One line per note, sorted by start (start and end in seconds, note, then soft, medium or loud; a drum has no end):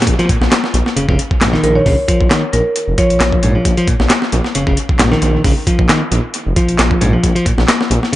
0.02 snare medium
0.02 closed hi-hat medium
0.07 0.15 A#1 loud
0.07 kick loud
0.07 closed hi-hat medium
0.19 0.28 F3 loud
0.19 closed hi-hat soft
0.29 0.35 A#2 loud
0.29 kick loud
0.29 closed hi-hat medium
0.41 0.48 A#1 medium
0.41 snare medium
0.51 snare loud
0.51 clap loud
0.51 closed hi-hat medium
0.64 snare soft
0.74 0.82 A#1 loud
0.74 closed hi-hat medium
0.86 snare soft
0.96 1.06 F1 soft
0.96 1.06 C#3 medium
0.96 closed hi-hat medium
1.08 1.16 F1 medium
1.08 1.18 C#3 medium
1.08 kick medium
1.19 closed hi-hat medium
1.31 1.39 A#1 soft
1.31 kick loud
1.41 1.57 A#1 medium
1.41 1.47 G#2 medium
1.41 snare loud
1.41 clap loud
1.41 closed hi-hat medium
1.53 1.85 D#3 loud
1.53 snare soft
1.63 1.79 A#1 medium
1.63 1.73 A#4 medium
1.63 closed hi-hat medium
1.75 1.87 C#5 medium
1.86 1.94 A#1 loud
1.86 1.95 C#3 medium
1.86 kick loud
1.86 open hi-hat medium
2.08 2.30 F3 medium
2.08 kick loud
2.08 closed hi-hat medium
2.21 2.27 A#1 medium
2.21 kick loud
2.30 2.42 D#3 medium
2.30 snare loud
2.30 clap loud
2.30 closed hi-hat medium
2.53 2.61 A#1 loud
2.53 2.66 A#4 medium
2.53 closed hi-hat medium
2.76 closed hi-hat medium
2.88 2.95 F1 medium
2.98 3.42 F3 medium
2.98 3.32 C#5 medium
2.98 kick loud
2.98 closed hi-hat medium
3.10 3.18 A#1 soft
3.10 closed hi-hat soft
3.20 3.36 A#1 medium
3.20 snare loud
3.20 clap loud
3.20 closed hi-hat medium
3.32 kick medium
3.43 3.58 A#1 medium
3.43 3.54 G#2 loud
3.43 closed hi-hat medium
3.55 3.76 F3 medium
3.65 3.73 A#1 loud
3.65 kick loud
3.65 closed hi-hat medium
3.77 3.87 F3 loud
3.77 closed hi-hat soft
3.87 3.93 A#2 loud
3.87 kick loud
3.87 closed hi-hat medium
4.00 4.07 A#1 loud
4.00 snare medium
4.10 snare loud
4.10 clap loud
4.10 closed hi-hat medium
4.22 snare soft
4.32 4.41 A#1 loud
4.32 closed hi-hat medium
4.44 snare soft
4.55 4.64 F1 soft
4.55 4.64 C#3 medium
4.55 closed hi-hat medium
4.67 4.74 F1 medium
4.67 4.77 C#3 medium
4.67 kick medium
4.77 closed hi-hat medium
4.89 4.97 A#1 soft
4.89 kick loud
4.99 5.15 A#1 medium
4.99 5.05 G#2 medium
4.99 snare loud
4.99 clap loud
4.99 closed hi-hat medium
5.12 5.43 D#3 loud
5.12 snare soft
5.22 5.38 A#1 medium
5.22 closed hi-hat medium
5.44 5.52 A#1 loud
5.44 5.53 C#3 medium
5.44 kick loud
5.44 open hi-hat medium
5.67 5.88 F3 medium
5.67 kick medium
5.67 closed hi-hat medium
5.79 5.86 A#1 medium
5.79 kick medium
5.89 6.01 D#3 medium
5.89 snare loud
5.89 clap loud
5.89 closed hi-hat medium
6.11 6.20 A#1 loud
6.11 closed hi-hat medium
6.34 closed hi-hat medium
6.46 6.53 F1 medium
6.56 7.00 F3 medium
6.56 kick loud
6.56 closed hi-hat medium
6.68 6.77 A#1 soft
6.68 closed hi-hat soft
6.79 6.94 A#1 medium
6.79 snare loud
6.79 clap loud
6.79 closed hi-hat medium
6.91 kick loud
7.01 7.16 A#1 medium
7.01 7.12 G#2 loud
7.01 closed hi-hat medium
7.13 7.34 F3 medium
7.24 7.32 A#1 loud
7.24 kick loud
7.24 closed hi-hat medium
7.35 7.45 F3 loud
7.35 closed hi-hat soft
7.45 7.51 A#2 loud
7.45 kick loud
7.45 closed hi-hat medium
7.58 7.65 A#1 medium
7.58 snare medium
7.68 snare loud
7.68 clap loud
7.68 closed hi-hat medium
7.81 snare soft
7.90 7.99 A#1 loud
7.90 closed hi-hat medium
8.03 snare soft
8.12 8.16 C#3 medium